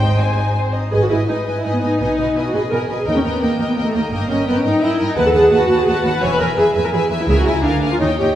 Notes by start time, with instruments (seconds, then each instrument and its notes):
Already playing: double bass section G#1, cello section G#2, viola section C5, violin section G5
0.01 violin section D#4 D#5
0.19 violin section C4 C5 G#5
0.38 violin section D#4 D#5
0.56 violin section C4 C5
0.74 violin section D#4 D#5
0.92 double bass section G#1, cello section G#2, viola section G#4, violin section B4 D#5 G#5
1.03 viola section F#4
1.10 cello section G#2, viola section E4, violin section B4 D#5 G#5
1.28 cello section G#2, viola section D#4, violin section B4 D#5 G#5
1.46 cello section G#2, violin section B4 D#5 G#5
1.56 viola section E4
1.64 cello section G#2, viola section D#4, violin section B4 D#5 G#5
1.74 viola section B3
1.81 cello section G#2, viola section D#4, violin section B4 D#5 G#5
2.00 double bass section B1, cello section B2, viola section D#4, violin section B4 D#5 G#5
2.17 cello section B2, violin section B4 D#5 G#5
2.35 cello section B2, viola section E4, violin section B4 D#5 G#5
2.45 viola section F#4
2.53 cello section B2, viola section G#4, violin section B4 D#5 G#5
2.71 cello section B2, viola section A#4, violin section B4 D#5 G#5
2.89 cello section B2, violin section B4 D#5 G#5
2.98 viola section G#4
3.05 double bass section D#2, cello section D#2, viola section D#4, violin section A#4 D#5 G5
3.15 viola section C#4
3.24 cello section D#2, viola section B3, violin section A#4 D#5 G5
3.41 cello section D#2, viola section A#3, violin section A#4 D#5 G5
3.59 cello section D#2, violin section A#4 D#5 G5
3.68 viola section B3
3.76 cello section D#2, viola section A#3, violin section A#4 D#5 G5
3.86 viola section A3
3.94 cello section D#2, viola section A#3, violin section A#4 D#5 G5
4.11 double bass section G1, cello section G2, viola section A#3, violin section A#4 D#5 G5
4.29 cello section G2, viola section C#4, violin section A#4 D#5 G5
4.47 cello section G2, viola section B3, violin section A#4 D#5 G5
4.57 viola section C#4
4.64 cello section G2, viola section D#4, violin section A#4 D#5 G5
4.81 cello section G2, viola section E4, violin section A#4 D#5 G5
4.98 cello section G2, violin section A#4 D#5 G5
5.08 viola section D#4
5.16 double bass section D#2, cello section D#2, violin section B4 F#5 A5, viola section B4
5.26 viola section A4
5.33 cello section D#2, viola section G#4, violin section B4 F#5 A5
5.51 cello section D#2, viola section F#4, violin section B4 F#5 A5
5.68 cello section D#2, violin section B4 F#5 A5
5.79 viola section G#4
5.87 cello section D#2, viola section F#4, violin section B4 F#5 A5
6.04 cello section D#2, violin section B4 F#5 A5
6.14 viola section B4
6.22 double bass section E1, cello section E2, violin section B4 E5 G#5, viola section C#5
6.31 viola section B4
6.38 cello section E2, viola section A#4, violin section B4 E5 G#5
6.57 cello section E2, viola section G#4, violin section B4 E5 G#5
6.74 cello section E2, violin section B4 E5 G#5
6.84 viola section A#4
6.92 cello section E2, viola section G#4, violin section B4 E5 G#5
7.10 cello section E2, violin section B4 E5 G#5
7.20 viola section E4
7.28 double bass section C#2, cello section C#2, viola section G#4, violin section A#4 E5 G#5
7.37 viola section F#4
7.46 cello section C#2, viola section E4, violin section A#4 E5 G#5
7.63 double bass section D2, cello section D2, viola section D4, violin section A#4 F5 G#5
7.82 cello section D2, violin section A#4 F5 G#5
7.91 viola section F4
8.00 double bass section D#2, cello section D#2, viola section D#4, violin section C#5 D#5 G5
8.18 cello section D#2, viola section G4, violin section C#5 D#5 G5